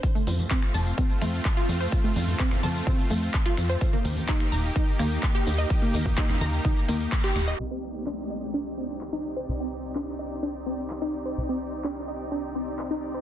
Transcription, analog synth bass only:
X:1
M:4/4
L:1/8
Q:1/4=127
K:Cdor
V:1 name="Analog synth bass" clef=bass
z F,, z F,,, z F,, z F,, | z F,, z F,, z F,, z F,, | z E,, z E,,, z E,, z E,, | z E,, z E,, z E,, z E,,, |
C,,8 | C,,8 | C,,8 |]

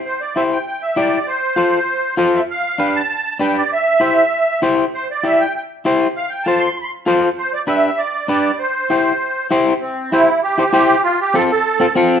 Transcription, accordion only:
X:1
M:4/4
L:1/16
Q:1/4=196
K:C
V:1 name="Accordion"
c2 d2 e2 g2 g2 e2 d4 | c12 z2 e2 | f6 a6 g2 d2 | e12 z4 |
c2 d2 e2 g2 g2 z6 | f2 g2 a2 c'2 c'/2 b/2 c' z6 | c2 d2 e4 d4 d4 | c12 z4 |
C4 E4 G4 G4 | F2 G2 A2 A6 z4 |]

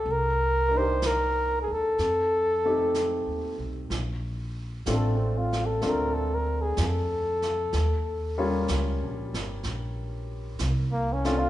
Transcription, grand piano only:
X:1
M:4/4
L:1/8
Q:"Swing" 1/4=63
K:Bb
V:1 name="Grand piano"
z [B,DEG]3 z [A,CEG]3 | z2 [A,CDF] z [A,CDF] z3 | z [G,B,_DF] z4 z [A,C=DF] |]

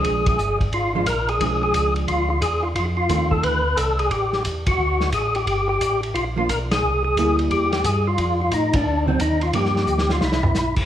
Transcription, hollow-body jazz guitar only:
X:1
M:4/4
L:1/8
Q:"Swing" 1/4=177
K:Gm
V:1 name="Hollow-body jazz guitar"
[F,_A,D]2 z3 [F,A,D] z2 | [F,^G,D]4- [F,G,D] z3 | z2 [E,A,C]3 z3 | z8 |
z4 z [F,B,D] z2 | z2 [G,B,=E]3 z3 | z4 z [D,^F,CE] z2 | [F,B,D]4 z4 |]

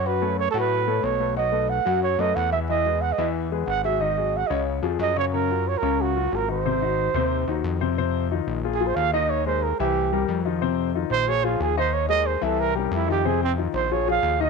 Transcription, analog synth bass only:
X:1
M:4/4
L:1/8
Q:1/4=182
K:G#phr
V:1 name="Analog synth bass" clef=bass
F,,3 A,,3 B,,,2- | B,,,3 F,,2 F,, E,,2- | E,,3 E,,3 G,,,2- | G,,,3 C,,2 ^E,, F,,2- |
F,,3 C,,3 G,,,2- | G,,,3 D,,2 D,, ^E,,2- | [K:Fm] ^E,,3 B,,,3 _E,,2- | E,,3 C,,3 F,,2- |
F,,3 B,,,3 E,,2- | E,,3 C,,3 F,,2- | F,,3 B,,,3 E,,2 |]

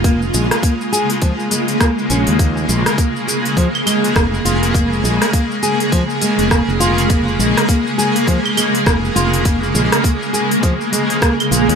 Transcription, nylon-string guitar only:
X:1
M:4/4
L:1/16
Q:"Swing 16ths" 1/4=102
K:Bbm
V:1 name="Nylon-string guitar"
B, z A,2 B,2 A z F,2 A,2 B,2 D z | B, z A,2 B,2 A z F,2 A,2 B,2 F2 | B, z A,2 B,2 A z F,2 A,2 B,2 F2 | B, z A,2 B,2 A z F,2 A,2 B,2 F2 |
B, z A,2 B,2 A z F,2 A,2 B,2 F2 |]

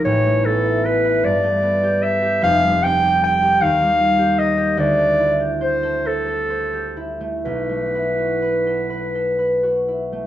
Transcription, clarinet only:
X:1
M:6/8
L:1/8
Q:3/8=50
K:Bm
V:1 name="Clarinet"
c A B d2 e | =f g g ^e2 ^d | d2 =c A2 z | B4- B z |]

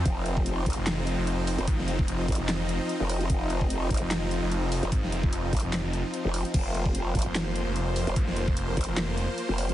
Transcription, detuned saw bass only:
X:1
M:4/4
L:1/16
Q:"Swing 16ths" 1/4=148
K:Fm
V:1 name="Detuned saw bass" clef=bass
z6 z F,,,4 F,,,4 z | A,,, F,,,3 F,,,2 z F,,,4 z4 z | z6 z F,,,4 F,,,4 z | A,,, F,,,3 F,,,2 z F,,,2 F,,,2 z4 z |
z6 z F,,,4 F,,,4 z | A,,, F,,,3 F,,,2 z F,,,4 z4 z |]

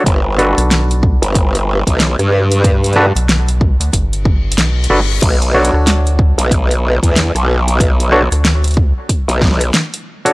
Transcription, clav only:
X:1
M:4/4
L:1/16
Q:"Swing 16ths" 1/4=93
K:Bm
V:1 name="Clav"
z2 [DFAB]12- [DFAB]2- | [DFAB]2 [DFAB] z8 z3 [DFAB] z | z2 [DFAc]12- [DFAc]2- | [DFAc]2 [DFAc] z12 [DFAc] |]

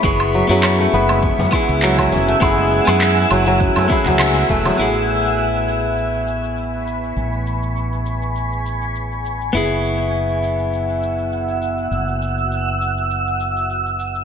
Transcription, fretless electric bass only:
X:1
M:4/4
L:1/16
Q:"Swing 16ths" 1/4=101
K:A
V:1 name="Fretless electric bass" clef=bass
F,,,2 z F,,2 z F,,,2 z F,, z C,,3 F,,, z | F,,,2 z F,,2 z F,,,2 z F,, z C,,2 z E,,, z | A,,,16 | A,,,16 |
F,,,16 | F,,,16 |]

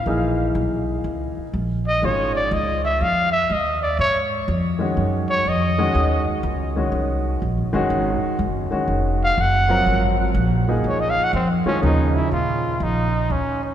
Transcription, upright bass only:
X:1
M:4/4
L:1/8
Q:"Swing" 1/4=122
K:Ebm
V:1 name="Upright bass" clef=bass
B,,,2 C,,2 D,, z B,,,2 | A,,,2 D,,2 F,,2 E,,2 | A,,2 F,,2 G,,2 F,,2 | E,, z D,,2 =C,,2 (3B,,, A,,, G,,, |
A,,, z G,,, z F,,,2 G,,,2 | A,,,2 B,,,2 D,, z F,, z | E,,2 B,,2 B,,,2 =D,,2 |]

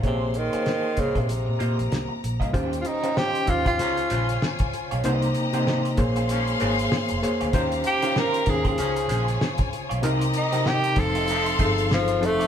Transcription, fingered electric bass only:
X:1
M:4/4
L:1/16
Q:"Swing 16ths" 1/4=96
K:Bbdor
V:1 name="Fingered electric bass" clef=bass
B,,,3 z3 C,, B,, B,,, B,, B,, B,,, C,, z B,,, C,, | E,,2 z4 E,,2 D,,2 B,,,2 z D,, z _C,, | C,,2 z4 B,,,4 A,,,2 z F,,, z =D,, | E,,2 z4 E,,2 D,,2 B,,,2 z D,, z _C,, |
C,,2 z4 F,,,4 G,,,4 F,,,2 |]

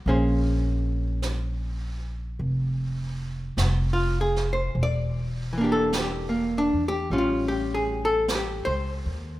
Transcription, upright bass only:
X:1
M:4/4
L:1/8
Q:"Swing" 1/4=51
K:Bblyd
V:1 name="Upright bass" clef=bass
B,,,4 F,,,2 F,,,2 | E,,,3 E,, A,,,2- (3A,,, ^C,, _E,, |]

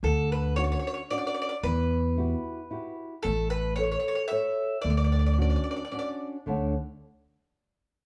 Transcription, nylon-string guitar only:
X:1
M:3/4
L:1/8
Q:"Swing" 1/4=112
K:D
V:1 name="Nylon-string guitar"
D,2 [CDF]2 [CDF]2 | E,2 [EFG]2 [EFG]2 | A,2 [ABc]2 [ABc]2 | D,2 [CDF]2 [CDF]2 |
[D,A,Dcfa] z4 z |]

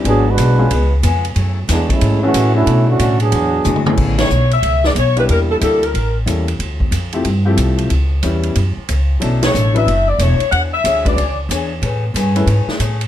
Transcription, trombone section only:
X:1
M:4/4
L:1/8
Q:"Swing" 1/4=184
K:A
V:1 name="Trombone section"
[F,B,DG] [G,DFB]4 z3 | z2 [E,G,B,D] [G,A,CE]2 [E,A,CF]2 [A,CDE]- | [A,CDE] [D,A,CF]2 [F,B,DG]4 z | z8 |
z8 | z8 | z8 | z8 |
z8 | z8 |]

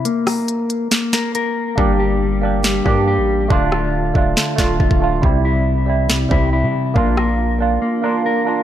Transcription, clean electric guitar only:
X:1
M:4/4
L:1/8
Q:1/4=139
K:Dm
V:1 name="Clean electric guitar"
B, B3 B, B B2 | G, G3 G, G G2 | D, F3 D, F F2 | C, E3 C, E E2 |
B, B3 B, B B2 |]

